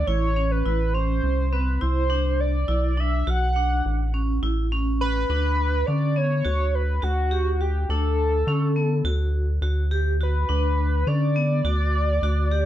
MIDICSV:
0, 0, Header, 1, 4, 480
1, 0, Start_track
1, 0, Tempo, 578592
1, 66, Time_signature, 9, 3, 24, 8
1, 10498, End_track
2, 0, Start_track
2, 0, Title_t, "Analog synth lead"
2, 0, Program_c, 0, 81
2, 54, Note_on_c, 0, 73, 99
2, 426, Note_on_c, 0, 71, 90
2, 438, Note_off_c, 0, 73, 0
2, 776, Note_on_c, 0, 72, 106
2, 788, Note_off_c, 0, 71, 0
2, 1266, Note_on_c, 0, 71, 84
2, 1278, Note_off_c, 0, 72, 0
2, 1503, Note_on_c, 0, 72, 97
2, 1515, Note_off_c, 0, 71, 0
2, 1992, Note_on_c, 0, 74, 88
2, 2005, Note_off_c, 0, 72, 0
2, 2487, Note_on_c, 0, 76, 87
2, 2499, Note_off_c, 0, 74, 0
2, 2734, Note_on_c, 0, 78, 103
2, 2746, Note_off_c, 0, 76, 0
2, 3442, Note_off_c, 0, 78, 0
2, 4156, Note_on_c, 0, 71, 108
2, 4863, Note_on_c, 0, 74, 103
2, 4875, Note_off_c, 0, 71, 0
2, 5119, Note_on_c, 0, 73, 112
2, 5131, Note_off_c, 0, 74, 0
2, 5598, Note_on_c, 0, 71, 96
2, 5611, Note_off_c, 0, 73, 0
2, 5834, Note_on_c, 0, 66, 95
2, 5847, Note_off_c, 0, 71, 0
2, 6313, Note_on_c, 0, 67, 83
2, 6326, Note_off_c, 0, 66, 0
2, 6552, Note_off_c, 0, 67, 0
2, 6555, Note_on_c, 0, 69, 92
2, 7959, Note_off_c, 0, 69, 0
2, 8486, Note_on_c, 0, 71, 95
2, 9190, Note_on_c, 0, 74, 122
2, 9202, Note_off_c, 0, 71, 0
2, 10498, Note_off_c, 0, 74, 0
2, 10498, End_track
3, 0, Start_track
3, 0, Title_t, "Vibraphone"
3, 0, Program_c, 1, 11
3, 63, Note_on_c, 1, 64, 89
3, 242, Note_off_c, 1, 64, 0
3, 300, Note_on_c, 1, 61, 71
3, 480, Note_off_c, 1, 61, 0
3, 544, Note_on_c, 1, 64, 69
3, 723, Note_off_c, 1, 64, 0
3, 785, Note_on_c, 1, 61, 64
3, 1141, Note_off_c, 1, 61, 0
3, 1266, Note_on_c, 1, 60, 71
3, 1444, Note_off_c, 1, 60, 0
3, 1503, Note_on_c, 1, 64, 83
3, 1682, Note_off_c, 1, 64, 0
3, 1741, Note_on_c, 1, 62, 83
3, 2098, Note_off_c, 1, 62, 0
3, 2225, Note_on_c, 1, 64, 83
3, 2404, Note_off_c, 1, 64, 0
3, 2468, Note_on_c, 1, 62, 71
3, 2646, Note_off_c, 1, 62, 0
3, 2714, Note_on_c, 1, 66, 81
3, 2889, Note_off_c, 1, 66, 0
3, 2953, Note_on_c, 1, 62, 70
3, 3306, Note_off_c, 1, 62, 0
3, 3435, Note_on_c, 1, 61, 66
3, 3610, Note_off_c, 1, 61, 0
3, 3675, Note_on_c, 1, 64, 75
3, 3850, Note_off_c, 1, 64, 0
3, 3915, Note_on_c, 1, 61, 73
3, 4268, Note_off_c, 1, 61, 0
3, 4395, Note_on_c, 1, 62, 73
3, 4747, Note_off_c, 1, 62, 0
3, 4871, Note_on_c, 1, 61, 65
3, 5048, Note_off_c, 1, 61, 0
3, 5111, Note_on_c, 1, 59, 62
3, 5288, Note_off_c, 1, 59, 0
3, 5349, Note_on_c, 1, 66, 85
3, 5703, Note_off_c, 1, 66, 0
3, 5825, Note_on_c, 1, 66, 70
3, 6004, Note_off_c, 1, 66, 0
3, 6066, Note_on_c, 1, 67, 73
3, 6245, Note_off_c, 1, 67, 0
3, 6311, Note_on_c, 1, 66, 63
3, 6487, Note_off_c, 1, 66, 0
3, 6554, Note_on_c, 1, 62, 79
3, 6906, Note_off_c, 1, 62, 0
3, 7033, Note_on_c, 1, 61, 75
3, 7208, Note_off_c, 1, 61, 0
3, 7268, Note_on_c, 1, 59, 69
3, 7446, Note_off_c, 1, 59, 0
3, 7507, Note_on_c, 1, 66, 84
3, 7862, Note_off_c, 1, 66, 0
3, 7983, Note_on_c, 1, 66, 78
3, 8162, Note_off_c, 1, 66, 0
3, 8222, Note_on_c, 1, 67, 74
3, 8402, Note_off_c, 1, 67, 0
3, 8468, Note_on_c, 1, 66, 70
3, 8645, Note_off_c, 1, 66, 0
3, 8701, Note_on_c, 1, 62, 74
3, 9058, Note_off_c, 1, 62, 0
3, 9184, Note_on_c, 1, 61, 71
3, 9363, Note_off_c, 1, 61, 0
3, 9422, Note_on_c, 1, 59, 70
3, 9601, Note_off_c, 1, 59, 0
3, 9664, Note_on_c, 1, 66, 85
3, 10019, Note_off_c, 1, 66, 0
3, 10147, Note_on_c, 1, 66, 78
3, 10324, Note_off_c, 1, 66, 0
3, 10381, Note_on_c, 1, 67, 78
3, 10498, Note_off_c, 1, 67, 0
3, 10498, End_track
4, 0, Start_track
4, 0, Title_t, "Analog synth bass"
4, 0, Program_c, 2, 38
4, 61, Note_on_c, 2, 33, 101
4, 521, Note_off_c, 2, 33, 0
4, 545, Note_on_c, 2, 33, 89
4, 1003, Note_off_c, 2, 33, 0
4, 1024, Note_on_c, 2, 36, 94
4, 1483, Note_off_c, 2, 36, 0
4, 1512, Note_on_c, 2, 36, 92
4, 2198, Note_off_c, 2, 36, 0
4, 2226, Note_on_c, 2, 35, 101
4, 2684, Note_off_c, 2, 35, 0
4, 2713, Note_on_c, 2, 35, 103
4, 3167, Note_off_c, 2, 35, 0
4, 3196, Note_on_c, 2, 33, 89
4, 3649, Note_off_c, 2, 33, 0
4, 3669, Note_on_c, 2, 33, 82
4, 4356, Note_off_c, 2, 33, 0
4, 4392, Note_on_c, 2, 38, 95
4, 4847, Note_off_c, 2, 38, 0
4, 4878, Note_on_c, 2, 50, 92
4, 5330, Note_off_c, 2, 50, 0
4, 5352, Note_on_c, 2, 38, 92
4, 5807, Note_off_c, 2, 38, 0
4, 5830, Note_on_c, 2, 38, 87
4, 6516, Note_off_c, 2, 38, 0
4, 6546, Note_on_c, 2, 38, 99
4, 7003, Note_off_c, 2, 38, 0
4, 7027, Note_on_c, 2, 50, 94
4, 7484, Note_off_c, 2, 50, 0
4, 7501, Note_on_c, 2, 38, 96
4, 7961, Note_off_c, 2, 38, 0
4, 7977, Note_on_c, 2, 38, 93
4, 8670, Note_off_c, 2, 38, 0
4, 8705, Note_on_c, 2, 38, 101
4, 9163, Note_off_c, 2, 38, 0
4, 9183, Note_on_c, 2, 50, 95
4, 9641, Note_off_c, 2, 50, 0
4, 9660, Note_on_c, 2, 38, 94
4, 10119, Note_off_c, 2, 38, 0
4, 10140, Note_on_c, 2, 38, 100
4, 10498, Note_off_c, 2, 38, 0
4, 10498, End_track
0, 0, End_of_file